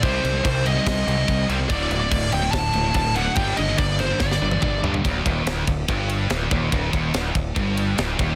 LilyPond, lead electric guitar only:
\new Staff \with { instrumentName = "Lead electric guitar" } { \time 4/4 \tempo 4 = 143 c''4 c''8 ees''2 r8 | d''8. d''8. g''8 a''4 a''8 fis''8 | g''8 ees''8 d''8 c''8 d''4. r8 | r1 |
r1 | }